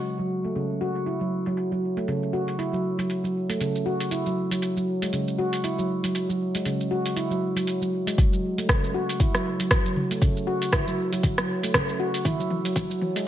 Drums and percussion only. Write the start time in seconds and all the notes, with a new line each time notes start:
0.05 closed hi-hat, shaker
0.20 shaker
0.45 closed hi-hat, shaker
0.56 closed hi-hat, shaker
0.70 shaker
0.95 closed hi-hat, shaker
1.06 closed hi-hat, shaker
1.21 shaker
1.46 closed hi-hat, shaker
1.57 closed hi-hat, shaker
1.72 shaker
1.97 closed hi-hat, shaker
2.08 closed hi-hat, shaker
2.23 shaker
2.48 closed hi-hat, shaker
2.59 closed hi-hat, shaker
2.74 shaker
2.99 closed hi-hat, shaker
3.10 closed hi-hat, shaker
3.25 shaker
3.50 closed hi-hat, shaker
3.61 closed hi-hat, shaker
3.75 shaker
4.00 closed hi-hat, shaker
4.11 closed hi-hat, shaker
4.26 shaker
4.51 closed hi-hat, shaker
4.62 closed hi-hat, shaker
4.77 shaker
5.02 closed hi-hat, shaker
5.13 closed hi-hat, shaker
5.28 shaker
5.53 closed hi-hat, shaker
5.64 closed hi-hat, shaker
5.79 shaker
6.04 closed hi-hat, shaker
6.15 closed hi-hat, shaker
6.30 shaker
6.55 closed hi-hat, shaker
6.65 closed hi-hat, shaker
6.81 shaker
7.06 closed hi-hat, shaker
7.17 closed hi-hat, shaker
7.31 shaker
7.57 closed hi-hat, shaker
7.67 closed hi-hat, shaker
7.82 shaker
8.07 closed hi-hat, shaker
8.18 kick, closed hi-hat, mid tom, shaker
8.33 shaker
8.58 closed hi-hat, shaker
8.69 kick, cross-stick, closed hi-hat, mid tom, shaker
8.84 shaker
9.09 closed hi-hat, shaker
9.20 kick, closed hi-hat, mid tom, shaker
9.35 cross-stick, shaker
9.60 closed hi-hat, shaker
9.71 kick, cross-stick, closed hi-hat, mid tom, shaker
9.86 shaker
9.96 mid tom
10.11 closed hi-hat, shaker
10.22 kick, closed hi-hat, mid tom, shaker
10.37 shaker
10.62 closed hi-hat, shaker
10.72 kick, cross-stick, closed hi-hat, mid tom, shaker
10.88 shaker
11.13 closed hi-hat, shaker
11.23 kick, closed hi-hat, mid tom, shaker
11.38 cross-stick, shaker
11.63 closed hi-hat, shaker
11.74 kick, cross-stick, closed hi-hat, mid tom, shaker
11.89 shaker
12.14 closed hi-hat, shaker
12.25 kick, closed hi-hat, mid tom, shaker
12.40 shaker
12.50 mid tom
12.65 closed hi-hat, shaker
12.76 kick, closed hi-hat, mid tom, shaker
12.91 shaker
13.02 mid tom
13.16 closed hi-hat, shaker